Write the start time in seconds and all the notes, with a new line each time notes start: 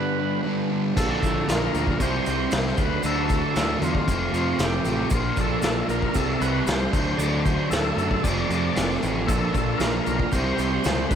Already playing: G2 D3 G3 B3 D4 B4
0.18 G3 B3 D4
0.43 G2 D3 G3 B3
0.48 D4
0.70 G3 B3 D4
0.94 A#1 A#2 D3 F3 A#3 D4 F4 A4, kick, crash, shaker
1.21 A#1 F3 A#3 F4, kick, crash, shaker
1.47 A#1 A#2 D3 F3 A#3 F4, snare, crash, shaker
1.51 D4 A#4
1.72 D2 A#2 D3 F3 A#3 F4, crash, shaker
1.87 kick
1.98 C2 C3 G3 C4 E4 G4, kick, crash, shaker
2.02 C5
2.24 C2 C3 G3 C4 E4, crash, shaker
2.51 C2 C3 G3 C4 E4, snare, crash, shaker
2.66 snare
2.77 D2 D3 F#3 A3 D4 F#4 B4, kick, crash, shaker
3.03 D2 D3 F#3 A3 D4 A4, crash, shaker
3.28 F#3 A3 D4, kick, crash, shaker
3.54 D2 D3 F#3 A3 D4, snare, crash, shaker
3.80 E2 D3 F#3 A3 D4, crash, shaker
3.84 F4
3.95 kick
4.06 F1 F2 C3 F3 A3 C4 F4, kick, crash, shaker
4.32 F2 C3 F3 A3 C4, crash, shaker
4.58 F1 C3 F3 A3 C4, snare, crash, shaker
4.64 G4
4.84 A1 F3 A3 C4, crash, shaker
5.10 A#1 A#2 F3 A#3 D4, kick, crash, shaker
5.14 F4
5.36 A#1 F3 A#3 D4, kick, crash, shaker
5.41 A4
5.62 A#1 A#2 F3 A#3 D4, snare, crash, shaker
5.88 A#1 A#2 F3 A#3 D4 A#4, crash, shaker
6.02 kick
6.14 C2 C3 G3 C4 E4 G4 A4, kick, crash, shaker
6.39 C2 C3 G3 C4 E4 B4, crash, shaker
6.66 C2 C3 G3 C4 E4 C5, snare, crash, shaker
6.91 D2 D3 F#3 A3 D4 F#4 C5, kick, crash, shaker
7.18 D2 D3 F#3 A3 D4 D5, crash, shaker
7.44 F#3 A3 D4 C5, kick, crash, shaker
7.70 D2 D3 F#3 A3 D4 A4, snare, crash, shaker
7.96 F#2 D3 F#3 A3 D4, crash, shaker
8.11 kick
8.22 F1 F2 C3 F3 A3 C4 F4 D5, kick, crash, shaker
8.48 F2 C3 F3 A3 C4, crash, shaker
8.74 F1 C3 F3 A3 C4, snare, crash, shaker
8.91 snare
9.01 A1 F3 A3 C4, crash, shaker
9.27 A#1 A#2 F3 A#3 D4 F4 A4, kick, crash, shaker
9.53 A#1 F3 A#3 D4, kick, crash, shaker
9.78 A#1 A#2 F3 A#3 A#4, snare, crash, shaker
9.82 D4
10.05 B1 A#2 F3 A#3 D4, crash, shaker
10.20 kick
10.32 C2 C3 G3 C4 E4 G4 C5, kick, crash, shaker
10.58 C2 G3 C4 E4, crash, shaker
10.62 C3
10.84 C#2 C3 G3 C4 E4, snare, crash, shaker
11.09 D2 F#3 A3 D4 F#4 B4, kick, crash, shaker